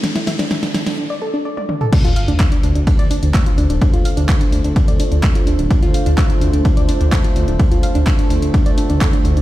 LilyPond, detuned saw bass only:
\new Staff \with { instrumentName = "Detuned saw bass" } { \clef bass \time 4/4 \key d \minor \tempo 4 = 127 r16 c,16 r16 c,16 r8 c,16 c,16 r2 | r16 d,16 r16 d,16 r8 d,16 d,16 r16 d,16 r16 d,16 r8 d,16 d,,16 | r16 d,16 r16 d,16 r8 d,16 d,16 r16 d,16 r16 d,16 r8 d,16 d,,16 | r16 d,16 r16 d,16 r8 d,16 d,16 r16 d,16 r16 d,16 r8 d,16 d,,16 |
r16 d,16 r16 d,16 r8 d,16 d,16 r16 d,16 r16 d,16 r8 d,16 d,16 | }